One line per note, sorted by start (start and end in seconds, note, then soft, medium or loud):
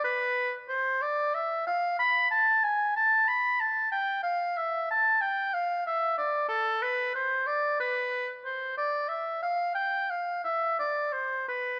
0.04 0.52 B4 medium
0.69 1.03 C5 medium
1.02 1.36 D5 medium
1.35 1.66 E5 medium
1.67 1.98 F5 medium
1.99 2.29 B5 medium
2.31 2.65 A5 medium
2.64 2.95 G#5 medium
2.96 3.30 A5 medium
3.28 3.62 B5 medium
3.60 3.91 A5 medium
3.92 4.22 G5 medium
4.23 4.59 F5 medium
4.57 4.89 E5 medium
4.91 5.23 A5 medium
5.21 5.55 G5 medium
5.54 5.85 F5 medium
5.87 6.17 E5 medium
6.18 6.48 D5 medium
6.48 6.84 A4 medium
6.82 7.14 B4 medium
7.15 7.48 C5 medium
7.47 7.79 D5 medium
7.80 8.28 B4 medium
8.45 8.76 C5 medium
8.78 9.10 D5 medium
9.09 9.42 E5 medium
9.43 9.74 F5 medium
9.75 10.12 G5 medium
10.10 10.43 F5 medium
10.44 10.77 E5 medium
10.79 11.14 D5 medium
11.13 11.48 C5 medium
11.48 11.80 B4 medium